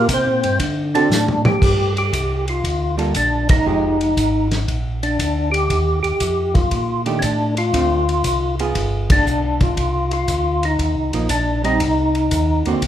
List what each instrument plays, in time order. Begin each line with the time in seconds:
0.09 tonewheel organ C3, kick, hi-hat pedal, ride
0.13 tonewheel organ C4 C5
0.27 tonewheel organ A#2
0.43 tonewheel organ G2, ride
0.60 tonewheel organ D3, kick, ride
0.94 hollow-body jazz guitar D3 C4 F#4 A4, tonewheel organ D4, ride
1.10 tonewheel organ A2, snare, hi-hat pedal
1.28 mid tom
1.45 tonewheel organ G4, mid tom
1.62 tonewheel organ G2, kick, crash
1.97 tonewheel organ G4, ride
2.13 tonewheel organ C2 G4, kick, hi-hat pedal, ride
2.48 tonewheel organ F4, ride
2.64 tonewheel organ D2, kick, ride
2.97 hollow-body jazz guitar G3 A#3 F4 A4, ride
3.14 tonewheel organ A#1 D4, kick, hi-hat pedal, ride
3.49 tonewheel organ D#4, kick, ride
3.66 tonewheel organ F1, hollow-body jazz guitar F3 G#3 D#4 G4
4.01 ride
4.17 tonewheel organ G#1, kick, hi-hat pedal, ride
4.51 snare, ride
4.68 tonewheel organ A#1, kick, ride
5.03 tonewheel organ D4, ride
5.19 tonewheel organ D2, kick, hi-hat pedal, ride
5.52 tonewheel organ G4, ride
5.70 tonewheel organ D#2, kick, ride
6.03 tonewheel organ D#2 G4, ride
6.20 tonewheel organ F2, kick, hi-hat pedal, ride
6.54 tonewheel organ F4, kick, ride
6.71 tonewheel organ A#2, kick, ride
7.06 hollow-body jazz guitar D#3 A3 D4 G4, ride
7.19 tonewheel organ A2 C#4 D4, kick, hi-hat pedal, ride
7.57 tonewheel organ F4, ride
7.73 tonewheel organ D2, hollow-body jazz guitar D3 A3 C4 F4, kick, ride
8.09 ride
8.24 tonewheel organ C2, kick, hi-hat pedal, ride
8.59 hollow-body jazz guitar B3 F4 G#4, ride
8.75 tonewheel organ G1, kick, ride
9.10 tonewheel organ D4, kick, ride
9.26 tonewheel organ B1, hi-hat pedal
9.61 tonewheel organ F4, kick, ride
9.77 tonewheel organ C2, kick, ride
10.11 tonewheel organ F4, ride
10.28 tonewheel organ D2, kick, hi-hat pedal, ride
10.63 tonewheel organ D#4, ride
10.79 tonewheel organ D#2, kick, ride
10.95 tonewheel organ C2
11.12 tonewheel organ A#1, hollow-body jazz guitar F3 A#3 D#4, ride
11.29 tonewheel organ A#1 D4, kick, hi-hat pedal, ride
11.64 hollow-body jazz guitar G3 C4 D#4, tonewheel organ D#4, ride
11.80 tonewheel organ C2, kick, ride
12.15 ride
12.31 tonewheel organ D#2, kick, hi-hat pedal, ride
12.65 tonewheel organ D#2, hollow-body jazz guitar D3 A#3 C4 F#4, ride
12.82 tonewheel organ D2, kick, ride